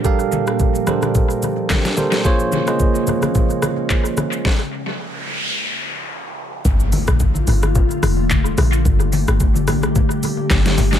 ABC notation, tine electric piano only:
X:1
M:4/4
L:1/16
Q:"Swing 16ths" 1/4=109
K:Gm
V:1 name="Tine electric piano"
[G,GABf]4- [G,GABf] z [G,GABc]6 z2 [G,GABc]2 | [B,F_Ac_d]2 z [B,FAce]6 z6 z | z16 | z16 |
z16 |]